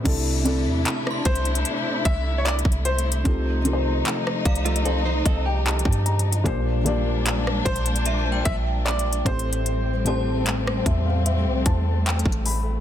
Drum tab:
CC |x-----------------------------------------------------------------------------------------------|------------------------------------------------------------------------------------------------|------------------------------------------------------------------------------------------------|------------------------------------------------------------------------------------------------|
HH |x-----------x-----------x-----------x--x--x--x--x-----------x-----------x---x---x---x---x---x---|x-----------x-----------x-----------x--x--x--x--x-----------x-----------x---x---x---x---x---x---|x-----------x-----------x-----------x--x--x--x--x-----------x-----------x---x---x---x---x---x---|x-----------x-----------x-----------x-----------x-----------x-----------x---x---x---o-----------|
CP |------------------------x-----------------------------------------------x-----------------------|------------------------x-----------------------------------------------x-----------------------|------------------------x-----------------------------------------------x-----------------------|------------------------x-----------------------------------------------x-----------------------|
SD |------------------------------r-----------------------------------------------------------------|------------------------------r-----------------------------------------------------------------|------------------------------r-----------------------------------------------------------------|------------------------------r-----------------------------------------------------------------|
BD |o-----------------------------------o-----------------------o-----------------o-----------------|o-----------------------------------o-----------------------o-----------------o-----------------|o-----------------------------------o-----------------------o-----------------------o-----------|------------------------------------o-----------------------o-----------------o-----------------|